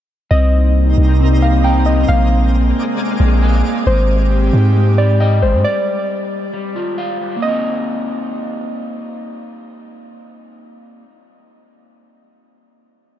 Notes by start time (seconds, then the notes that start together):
0.31 C2 C3 G3 A#3 C4 D#4 A#4 D#5
0.98 C2
1.20 C4
1.42 A#4 F5
1.64 G5 A#5
1.86 C4 D#5
2.08 A#1 G#3 A#3 G#4 D5 F5
2.98 A#3
3.20 A#1 G#4
3.42 G#5
3.65 A#3
3.86 G#1 G#3 C4 G4 C5
4.53 G#2
4.76 G#3
4.98 G4 D5
5.20 D#5 G5
5.42 G1 G#3 C5
5.53 G#2
5.64 G3 D5
6.54 G3
6.76 F4
6.98 F5
7.21 G3
7.37 A#3
7.42 C4 D#5
7.48 D#4